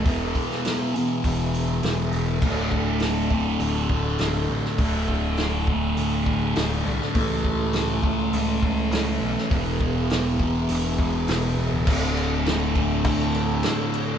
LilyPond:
<<
  \new Staff \with { instrumentName = "Tonewheel organ" } { \time 4/4 \key d \lydian \tempo 4 = 102 << { <b gis'>1 | d'1~ | d'1 | <cis' a'>1 |
<b gis'>1 | <d' a'>1 | } \\ { e'1 | fis'1~ | fis'1 | e'1~ |
e'1 | fis'1 | } >> }
  \new Staff \with { instrumentName = "Distorted electric guitar" } { \clef bass \time 4/4 \key d \lydian <e, b, e>4. <e, b, e>2~ <e, b, e>8 | <d, a, d>4. <d, a, d>2~ <d, a, d>8 | <d, a, d>4. <d, a, d>2~ <d, a, d>8 | <a, e a>4. <a, e a>2~ <a, e a>8 |
<e, b, e>4. <e, b, e>2~ <e, b, e>8 | <d, a, d>4. <d, a, d>2~ <d, a, d>8 | }
  \new Staff \with { instrumentName = "Picked electric bass" } { \clef bass \time 4/4 \key d \lydian e,,8 r4. e,,4 e,,8 e,,8 | d,,2 d,,8 d,,8 d,,8 a,,16 r16 | d,,2 d,,8 d,,8 d,,8 c,16 r16 | cis,2 cis,8 cis,8 cis,8 b,,16 r16 |
e,,2 e,,8 e,,8 e,,8 e,,16 d,,16 | d,,2 d,8 d,8 r4 | }
  \new DrumStaff \with { instrumentName = "Drums" } \drummode { \time 4/4 <hho bd>8 <hho bd>16 sn16 <hho sn>8 hho8 <hho bd>8 hho8 <hho sn>8 hho8 | <cymc bd>8 bd8 <hho sn>8 bd8 hho8 bd8 <hho sn>8. sn16 | <hho bd>8 bd8 <hho sn>8 bd8 hho8 bd8 <hho sn>8. sn16 | <hho bd>8 bd8 <hho sn>8 bd8 hho8 bd8 <hho sn>8. sn16 |
<hho bd>8 bd8 <hho sn>8 bd8 hho8 bd8 <hho sn>4 | <cymc bd>8 cymc8 <cymc sn>8 <cymc bd>8 <cymc bd>8 cymc8 <cymc sn>8 cymc8 | }
>>